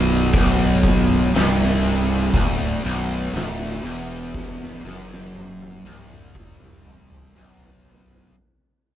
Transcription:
0.00 0.29 B0 loud
0.00 0.32 B1 loud
0.34 1.29 B0 medium
0.34 1.32 B1 medium
0.34 kick loud
0.34 open hi-hat medium
0.83 kick medium
0.83 open hi-hat medium
1.34 2.29 C1 medium
1.34 2.32 C2 loud
1.34 snare loud
1.34 open hi-hat medium
1.84 open hi-hat medium
2.34 2.80 D1 medium
2.34 2.82 D2 medium
2.34 kick loud
2.34 open hi-hat medium
2.83 3.30 B0 medium
2.83 3.32 B1 loud
2.83 open hi-hat medium
3.33 3.80 D1 medium
3.33 3.82 D2 medium
3.33 snare loud
3.33 open hi-hat medium
3.62 snare soft
3.83 4.80 E1 medium
3.83 4.82 E2 loud
3.83 open hi-hat medium
4.34 kick loud
4.34 snare medium
4.63 snare medium
4.84 5.80 F#1 medium
4.84 5.83 F#2 medium
4.84 snare medium
5.13 snare medium
5.35 high tom medium
5.61 high tom medium
5.85 7.31 C1 medium
5.85 7.33 C2 medium
5.85 high tom medium
6.10 mid tom medium
6.35 kick loud
6.35 mid tom medium
6.60 mid tom medium
6.85 mid tom medium
7.10 mid tom medium
7.35 8.31 B0 medium
7.35 8.34 B1 loud
7.35 mid tom medium
7.60 floor tom medium
7.85 floor tom loud
8.10 floor tom medium

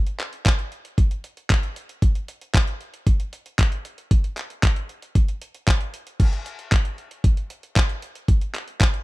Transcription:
0.07 closed hi-hat soft
0.20 clap medium
0.20 closed hi-hat medium
0.33 closed hi-hat soft
0.46 kick loud
0.46 clap loud
0.46 closed hi-hat medium
0.59 closed hi-hat soft
0.72 closed hi-hat soft
0.85 closed hi-hat soft
0.98 kick loud
0.98 closed hi-hat medium
1.11 closed hi-hat soft
1.24 closed hi-hat medium
1.37 closed hi-hat soft
1.50 kick loud
1.50 clap loud
1.50 closed hi-hat medium
1.63 closed hi-hat soft
1.76 closed hi-hat medium
1.89 closed hi-hat soft
2.02 kick loud
2.02 closed hi-hat loud
2.15 closed hi-hat soft
2.28 closed hi-hat medium
2.41 closed hi-hat soft
2.54 kick loud
2.54 clap loud
2.54 closed hi-hat loud
2.68 closed hi-hat soft
2.81 closed hi-hat soft
2.94 closed hi-hat soft
3.07 kick loud
3.07 closed hi-hat medium
3.20 closed hi-hat soft
3.33 closed hi-hat medium
3.46 closed hi-hat soft
3.59 kick medium
3.59 clap loud
3.59 closed hi-hat loud
3.72 closed hi-hat soft
3.85 closed hi-hat medium
3.98 closed hi-hat soft
4.11 kick loud
4.11 closed hi-hat loud
4.24 closed hi-hat soft
4.37 clap medium
4.37 closed hi-hat medium
4.50 closed hi-hat soft
4.63 kick loud
4.63 clap loud
4.63 closed hi-hat medium
4.76 closed hi-hat soft
4.89 closed hi-hat soft
5.02 closed hi-hat soft
5.15 kick loud
5.15 closed hi-hat loud
5.28 closed hi-hat soft
5.42 closed hi-hat medium
5.55 closed hi-hat soft
5.68 kick loud
5.68 clap loud
5.68 closed hi-hat loud
5.81 closed hi-hat soft
5.94 closed hi-hat medium
6.07 closed hi-hat soft
6.20 kick loud
6.20 closed hi-hat loud
6.20 crash medium
6.33 closed hi-hat soft
6.46 closed hi-hat medium
6.59 closed hi-hat soft
6.72 kick loud
6.72 clap loud
6.72 closed hi-hat loud
6.85 closed hi-hat soft
6.98 closed hi-hat soft
7.11 closed hi-hat soft
7.24 kick loud
7.24 closed hi-hat medium
7.37 closed hi-hat soft
7.50 closed hi-hat medium
7.63 closed hi-hat soft
7.76 kick loud
7.76 clap loud
7.76 closed hi-hat loud
7.89 closed hi-hat soft
8.02 closed hi-hat medium
8.15 closed hi-hat soft
8.28 kick loud
8.28 closed hi-hat medium
8.41 closed hi-hat soft
8.55 clap medium
8.55 closed hi-hat medium
8.68 closed hi-hat soft
8.81 kick loud
8.81 clap loud
8.81 closed hi-hat loud
8.94 closed hi-hat soft

